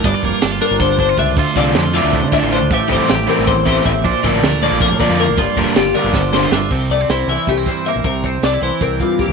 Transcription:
<<
  \new Staff \with { instrumentName = "Clean electric guitar" } { \time 7/8 \key c \mixolydian \tempo 4 = 158 d''8 bes'8 g'8 bes'8 c''8 c''8 e''8 | c''8 d''8 c''8 e''8 c''8 e''8 c''8 | e''8 c''8 g'8 bes'8 c''8 c''8 e''8 | c''8 d''8 bes'8 d''8 bes'8 d''8 bes'8 |
d''8 bes'8 g'8 bes'8 c''8 c''8 e''8 | c''8 d''8 c''8 e''8 g'8 c''8 e''8 | bes'8 c''8 d''8 c''8 bes'8 f'8 g'8 | }
  \new Staff \with { instrumentName = "Clean electric guitar" } { \time 7/8 \key c \mixolydian << { d'16 f'16 bes8 d'16 f'16 d'4 d'16 f'16 d'8 | f'8 c'8 d'16 f'16 d'4 d'16 f'16 d'8 | g'8 g8 g'8 c'4 g'8 c'8 | d'8 a8 d'8 bes4 d'8 bes8 |
f'8 bes8 f'8 d'4 d'16 f'16 d'8 | r8 a16 c'16 e'4 a16 c'8. bes8 | r8 c'8 d'16 e'8. c'4 bes8 | } \\ { g,2 d4. | d,2 a,4. | a,2 e,4. | bes,2 f,4. |
g,2 d4. | c4. e4 g,4 | c4. e4 g,4 | } >> }
  \new Staff \with { instrumentName = "Overdriven electric guitar" } { \time 7/8 \key c \mixolydian r2. r8 | r8 <d a d' f'>8 r8 <d a d' f'>8 r8 <d a d' f'>8 r8 | r8 <e a c' e'>8 r8 <e a c' e'>8 r8 <e a c' e'>8 r8 | r8 <d f bes d'>8 r8 <d f bes d'>8 r8 <d f bes d'>8 r8 |
r8 <d g bes d'>8 r8 <d g bes d'>8 r8 <d g bes d'>8 r8 | r2. r8 | r2. r8 | }
  \new Staff \with { instrumentName = "Fingered electric bass" } { \clef bass \time 7/8 \key c \mixolydian g,,16 r16 f,,16 r16 g,,8 r16 g,,4~ g,,16 cis,8 | d,16 r16 c,8 f,8. d,8 d8 a,,8 d,16 | a,,16 r16 g,,16 r16 a,,8 r16 a,,4~ a,,16 a,,8 | bes,,16 r16 a,,8 d,8. bes,,8 bes,8 f,8 a,,16 |
g,,16 r16 f,,16 r16 g,,8 r16 g,,4~ g,,16 g,,8 | c,4 c,8 c,16 r16 c,8 r8. bes,,16 | c,4 c,8 c,16 r16 c,8 r8. cis,16 | }
  \new DrumStaff \with { instrumentName = "Drums" } \drummode { \time 7/8 <bd cymr>8 <bd cymr>8 <cymr sn>8 <cymr sn>8 <bd cymr sn>8 <bd cymr>8 <bd cymr sn>8 | <cymc bd>8 <bd cymr>8 <cymr sn>8 cymr8 <bd cymr>8 <bd cymr sn>8 cymr8 | <bd cymr>8 <bd cymr>8 <cymr sn>8 cymr8 <bd cymr>8 <bd cymr sn>8 <bd cymr>8 | <bd cymr>8 <bd cymr>8 <cymr sn>8 cymr8 <bd cymr>8 <bd cymr>8 cymr8 |
<bd cymr>8 <bd cymr>8 <cymr sn>8 cymr8 <bd sn>8 sn8 sn8 | <cymc bd>8 <hh bd>8 <hh sn>8 hh8 <hh bd>8 <hh bd sn>8 hh8 | <hh bd>8 <hh bd>8 <hh sn>8 hh8 <hh bd>8 <hh bd>8 <hh bd>8 | }
>>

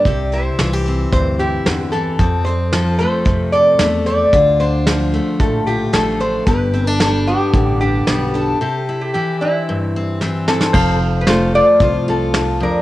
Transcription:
<<
  \new Staff \with { instrumentName = "Pedal steel guitar" } { \time 4/4 \key f \major \tempo 4 = 112 r1 | r1 | r1 | r1 |
r1 | <c'' f''>1 | }
  \new Staff \with { instrumentName = "Resonator guitar played with a steel bar" } { \time 4/4 \key f \major d''8 c''4. c''8 g'4 a'8~ | a'8 c''4 c''4 d''4 d''8~ | d''8 c''4. a'8 g'8 a'8 c''8 | b'4 a'8 g'4 g'4 a'8~ |
a'8. g'16 g'8 e'2 <c' a'>8~ | <c' a'>8 r16. b'32 <f' c''>8 <f' d''>8 <f' c''>8 <c' a'>4 <d' bes'>8 | }
  \new Staff \with { instrumentName = "Steel-string acoustic guitar" } { \time 4/4 \key f \major << { g'8 e'8 f'16 g'16 c'4 e'4. | c'8 c'8 a'8 a4 a'8 a8 c'8 | f'8 d'8 f'8 a4 f'8 a8 d'8 | g'8 c'16 d'16 g'8 b4 d'8 b8 d'8 |
g'8 e'8 e'8 c'4 c'8 c'8 e'8 | r4. f'8 f'8 f'4. | } \\ { c4 e4 g,4 d8 e8 | f,4 f4 c4 r4 | d4 f4 a,4 f4 | g,4 g4 d4 g4 |
c4 e4 g,4 e4 | f,4 a4 f,4. f,8 | } >> }
  \new Staff \with { instrumentName = "Upright bass" } { \clef bass \time 4/4 \key f \major c,4 c,4 d,4 e,4 | f,2 f,4 e,4 | d,2 bes,,4 a,,4 | g,,2 a,,4 b,,4 |
r1 | f,,2 c,2 | }
  \new DrumStaff \with { instrumentName = "Drums" } \drummode { \time 4/4 <hh bd>8 hh8 <hh sn>8 hh8 <hh bd>8 hh8 <hh sn>8 hh8 | <hh bd>8 hh8 <hh sn>8 hh8 <hh bd>8 hh8 <hh sn>8 hh8 | <hh bd>8 hh8 <hh sn>8 hh8 <hh bd>8 hh8 <hh sn>8 hh8 | <hh bd>8 hh8 <hh sn>8 hh8 <hh bd>8 hh8 <hh sn>8 hh8 |
r4 r4 r4 sn8 sn16 sn16 | <cymc bd>4 sn4 <hho bd>4 sn4 | }
>>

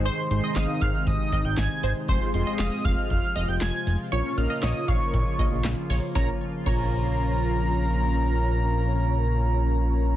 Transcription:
<<
  \new Staff \with { instrumentName = "Analog synth lead" } { \time 4/4 \key bes \minor \tempo 4 = 118 c'''8 c'''8 ees'''8 f'''8 ees'''8. g'''16 aes'''8. r16 | c'''8 c'''8 ees'''8 f'''8 f'''8. g'''16 aes'''8. r16 | des'''8 f'''8 ees'''8 des'''4. r4 | bes''16 r8. bes''2.~ |
bes''1 | }
  \new Staff \with { instrumentName = "Synth pluck" } { \time 4/4 \key bes \minor c''8 r16 ees''16 f''8 f''16 r8. ees''8 r8 c''16 r16 | c''8 r16 ees''16 f''8 f''16 r8. ees''8. r8. | des''8 r16 ees''16 des''8 f''16 r8. ees''8 r8 des''16 r16 | des''8 r8 des''2 r4 |
r1 | }
  \new Staff \with { instrumentName = "Analog polysynth" } { \time 4/4 \key bes \minor <aes c' ees' aes' c''>8 <aes c' ees' aes' c''>4. r2 | <aes c' f' aes' c''>8 <aes c' f' aes' ees''>4. r2 | <bes des' f' bes' des''>8 <bes des' f' bes' ees''>4. r2 | <des' f' bes' des''>8 r8 <des' f' bes' des''>2.~ |
<des' f' bes' des''>1 | }
  \new Staff \with { instrumentName = "Analog synth pad" } { \clef bass \time 4/4 \key bes \minor << { <ees ees'>1 | <f f'>1~ | <f f'>1 | <des f bes f'>1~ |
<des f bes f'>1 | } \\ { <c aes>1~ | <c aes>1 | <des bes>1 | r1 |
r1 | } >> }
  \new Staff \with { instrumentName = "Analog synth bass" } { \clef bass \time 4/4 \key bes \minor aes,,16 r16 aes,,16 r16 aes,,16 r16 aes,,16 r16 aes,,16 r16 aes,,16 aes,,16 aes,,16 r16 aes,,16 r16 | f,,16 r16 f,,16 r16 f,,16 r16 f,,16 r16 f,,16 r16 f,,16 f,,16 f,,16 r16 f,,16 r16 | bes,,16 r16 bes,,16 r16 bes,,16 r16 bes,,16 r16 bes,,16 r16 bes,,16 bes,,16 bes,,16 r16 bes,,16 r16 | bes,,16 r8. bes,,2.~ |
bes,,1 | }
  \new DrumStaff \with { instrumentName = "Drums" } \drummode { \time 4/4 hh8 hh8 <hc hh sn>8 <hh bd>8 <hh bd>8 <hh bd>8 <hc hh sn>8 hh8 | <hh bd>8 hh8 <hc hh sn>8 <hh bd>8 <hh bd>8 hh8 <hc hh sn>8 hh8 | hh8 hh8 <hc hh sn>8 <hh bd>8 <hh bd>8 <hh bd>8 <hc hh sn>8 hho8 | <bd sn>4 <cymc bd>4 r4 r4 |
r4 r4 r4 r4 | }
>>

